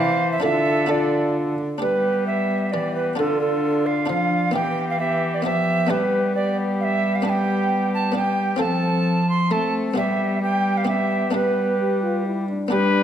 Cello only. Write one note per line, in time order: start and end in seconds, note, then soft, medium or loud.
0.00 0.43 E3 medium
0.43 1.59 D3 medium
1.82 2.75 G3 medium
2.73 3.18 E3 medium
3.19 4.10 D3 medium
4.09 4.54 F3 medium
4.54 5.46 E3 medium
5.45 5.91 F3 medium
5.90 8.60 G3 medium
8.60 9.52 F3 medium
9.51 9.96 A3 medium
9.97 11.31 G3 medium
11.33 12.49 G3 medium
12.71 13.03 G3 medium